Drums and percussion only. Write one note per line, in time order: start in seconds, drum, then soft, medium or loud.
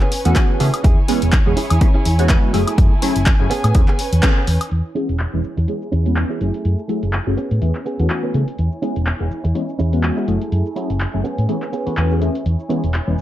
0.01 clap soft
0.12 open hi-hat medium
0.25 closed hi-hat medium
0.36 kick medium
0.36 clap loud
0.36 closed hi-hat medium
0.60 open hi-hat medium
0.74 closed hi-hat medium
0.74 high woodblock medium
0.84 kick loud
0.84 closed hi-hat medium
1.08 open hi-hat loud
1.22 closed hi-hat medium
1.32 kick loud
1.32 clap loud
1.32 closed hi-hat soft
1.57 open hi-hat medium
1.70 closed hi-hat medium
1.70 high woodblock medium
1.81 kick loud
1.81 closed hi-hat medium
2.05 open hi-hat loud
2.19 closed hi-hat medium
2.29 kick loud
2.29 clap loud
2.29 closed hi-hat medium
2.54 open hi-hat medium
2.67 closed hi-hat medium
2.67 high woodblock medium
2.78 kick loud
2.78 closed hi-hat medium
3.02 open hi-hat loud
3.16 closed hi-hat medium
3.26 kick loud
3.26 clap loud
3.26 closed hi-hat soft
3.51 open hi-hat medium
3.64 closed hi-hat medium
3.64 high woodblock medium
3.75 kick loud
3.75 closed hi-hat medium
3.88 clap soft
3.99 open hi-hat loud
4.13 closed hi-hat medium
4.23 kick loud
4.23 clap loud
4.23 closed hi-hat medium
4.47 open hi-hat medium
4.61 closed hi-hat medium
4.61 high woodblock medium
4.71 closed hi-hat medium
4.71 cabasa soft
4.85 cabasa soft
4.96 closed hi-hat medium
4.96 cabasa medium
5.09 closed hi-hat soft
5.09 cabasa soft
5.19 clap loud
5.19 closed hi-hat soft
5.19 cabasa soft
5.44 cabasa medium
5.57 closed hi-hat soft
5.57 cabasa soft
5.68 closed hi-hat medium
5.68 cabasa soft
5.82 cabasa soft
5.92 closed hi-hat soft
5.92 cabasa medium
6.06 closed hi-hat soft
6.06 cabasa soft
6.16 clap loud
6.16 closed hi-hat medium
6.16 cabasa soft
6.30 cabasa soft
6.41 closed hi-hat medium
6.41 cabasa medium
6.54 closed hi-hat soft
6.54 cabasa soft
6.65 closed hi-hat medium
6.65 cabasa soft
6.79 cabasa soft
6.89 closed hi-hat medium
6.89 cabasa medium
7.03 closed hi-hat soft
7.03 cabasa soft
7.13 clap loud
7.13 closed hi-hat soft
7.13 cabasa soft
7.38 closed hi-hat soft
7.38 cabasa medium
7.51 closed hi-hat soft
7.51 cabasa soft
7.62 closed hi-hat medium
7.62 cabasa soft
7.75 clap soft
7.75 cabasa soft
7.86 closed hi-hat soft
7.86 cabasa medium
7.99 closed hi-hat soft
7.99 cabasa soft
8.10 clap loud
8.10 closed hi-hat medium
8.10 cabasa soft
8.24 cabasa soft
8.34 closed hi-hat medium
8.34 cabasa medium
8.48 closed hi-hat soft
8.48 cabasa soft
8.58 closed hi-hat medium
8.58 cabasa soft
8.72 cabasa soft
8.83 closed hi-hat medium
8.83 cabasa medium
8.96 closed hi-hat soft
8.96 cabasa soft
9.07 clap loud
9.07 closed hi-hat soft
9.07 cabasa soft
9.31 cabasa medium
9.45 closed hi-hat soft
9.45 cabasa soft
9.55 closed hi-hat medium
9.55 cabasa soft
9.69 cabasa soft
9.79 closed hi-hat soft
9.79 cabasa medium
9.93 closed hi-hat soft
9.93 cabasa soft
10.03 clap loud
10.03 closed hi-hat medium
10.03 cabasa soft
10.17 cabasa soft
10.28 closed hi-hat medium
10.28 cabasa medium
10.42 closed hi-hat soft
10.42 cabasa soft
10.52 closed hi-hat medium
10.52 cabasa soft
10.66 cabasa soft
10.76 closed hi-hat medium
10.76 cabasa medium
10.90 closed hi-hat soft
10.90 cabasa soft
11.00 clap loud
11.00 closed hi-hat soft
11.00 cabasa soft
11.25 closed hi-hat soft
11.25 cabasa medium
11.38 closed hi-hat soft
11.38 cabasa soft
11.49 closed hi-hat medium
11.49 cabasa soft
11.62 clap soft
11.62 cabasa soft
11.73 closed hi-hat soft
11.73 cabasa medium
11.87 closed hi-hat soft
11.87 cabasa soft
11.97 clap loud
11.97 closed hi-hat medium
11.97 cabasa soft
12.11 cabasa soft
12.22 closed hi-hat medium
12.22 cabasa medium
12.35 closed hi-hat soft
12.35 cabasa soft
12.46 closed hi-hat medium
12.46 cabasa soft
12.60 cabasa soft
12.70 closed hi-hat medium
12.70 cabasa medium
12.84 closed hi-hat soft
12.84 cabasa soft
12.94 clap loud
12.94 closed hi-hat soft
12.94 cabasa soft
13.18 cabasa medium